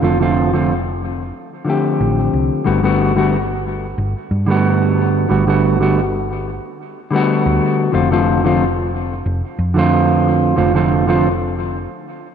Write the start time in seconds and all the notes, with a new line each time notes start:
0.02 F1 D3 F3 A3 C4 F4
0.20 D3 F3 A3 C4 F4
0.53 D3 F3 A3 C4 F4
1.65 D3 F3 A3 C4
1.70 G4
2.00 A1
2.33 C2
2.64 G1 D3 G3 A3 B3 F#4
2.83 D3 G3 A3 B3 F#4
3.16 D3 G3 A3 B3 F#4
3.98 G1
4.31 G2
4.46 D3 G3 A3 B3
4.51 F#4
5.29 G1 D3 G3 A3 B3 F#4
5.47 D3 G3 A3 B3 F#4
5.80 D3 G3 A3 B3 F#4
7.11 D3 G3 A3 B3
7.16 F#4
7.46 D2
7.92 F1 D3 F3 A3 C4 F4
8.11 D3 F3 A3 C4 F4
8.44 D3 F3 A3 C4 F4
9.26 F1
9.59 F2
9.74 D3 F3 A3 C4
9.79 F4
10.56 F1 D3 F3 A3 C4 F4
10.74 D3 F3 A3 C4 F4
11.07 D3 F3 A3 C4 F4